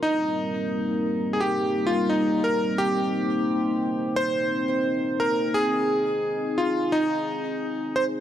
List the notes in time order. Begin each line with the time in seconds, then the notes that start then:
Already playing: A#4
0.03 G3 A#3 C4 D#4
1.33 G#4
1.41 G4
1.87 F4
2.09 D#4
2.44 A#4
2.78 G4 C5
4.16 C5
5.20 A#4
5.54 G#4
6.58 F4
6.92 D#4
7.96 C5